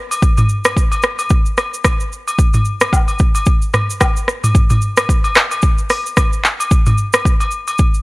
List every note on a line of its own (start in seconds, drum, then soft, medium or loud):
0.11 high agogo medium
0.11 shaker loud
0.22 kick loud
0.22 shaker medium
0.38 mid tom loud
0.38 high agogo medium
0.38 shaker medium
0.49 shaker medium
0.65 cross-stick loud
0.65 high agogo medium
0.65 shaker medium
0.77 kick medium
0.77 shaker medium
0.92 high agogo medium
0.92 shaker medium
1.03 cross-stick loud
1.03 shaker medium
1.19 high agogo medium
1.19 shaker medium
1.30 kick loud
1.30 shaker medium
1.46 shaker soft
1.57 cross-stick medium
1.57 high agogo medium
1.57 shaker medium
1.74 shaker medium
1.84 kick loud
1.84 cross-stick loud
1.84 high agogo medium
1.84 shaker medium
2.00 shaker medium
2.12 shaker medium
2.28 high agogo medium
2.28 shaker loud
2.39 kick loud
2.39 shaker medium
2.54 mid tom medium
2.54 high agogo medium
2.54 shaker medium
2.65 shaker medium
2.81 cross-stick loud
2.81 high agogo medium
2.81 shaker medium
2.93 kick medium
2.93 low woodblock medium
2.93 shaker medium
3.08 high agogo medium
3.08 shaker medium
3.19 kick loud
3.19 shaker medium
3.35 high agogo medium
3.35 shaker medium
3.46 kick loud
3.46 shaker medium
3.62 shaker soft
3.74 cross-stick medium
3.74 mid tom medium
3.74 high agogo medium
3.74 shaker medium
3.90 shaker medium
4.00 kick loud
4.00 cross-stick loud
4.00 high agogo medium
4.00 low woodblock medium
4.00 shaker medium
4.17 shaker medium
4.28 cross-stick medium
4.28 shaker medium
4.44 mid tom medium
4.44 high agogo medium
4.44 shaker loud
4.55 kick loud
4.55 shaker medium
4.70 mid tom medium
4.70 high agogo medium
4.70 shaker medium
4.82 shaker medium
4.97 cross-stick loud
4.97 high agogo medium
4.97 shaker medium
5.09 kick medium
5.09 shaker medium
5.24 high agogo medium
5.24 shaker medium
5.35 cross-stick loud
5.35 clap loud
5.35 shaker medium
5.51 high agogo medium
5.51 shaker medium
5.62 kick loud
5.62 shaker medium
5.78 shaker soft
5.90 cross-stick medium
5.90 open hi-hat medium
5.90 high agogo medium
5.90 shaker medium
6.06 shaker medium
6.17 kick loud
6.17 cross-stick loud
6.17 high agogo medium
6.17 shaker medium
6.33 shaker medium
6.44 clap medium
6.44 shaker medium
6.60 high agogo medium
6.60 shaker loud
6.71 kick loud
6.71 shaker medium
6.86 mid tom loud
6.86 high agogo medium
6.86 shaker medium
6.98 shaker medium
7.13 cross-stick loud
7.13 high agogo medium
7.13 shaker medium
7.25 kick medium
7.25 shaker medium
7.40 high agogo medium
7.40 shaker medium
7.51 shaker medium
7.68 high agogo medium
7.68 shaker medium
7.78 kick loud
7.78 shaker medium
7.94 shaker soft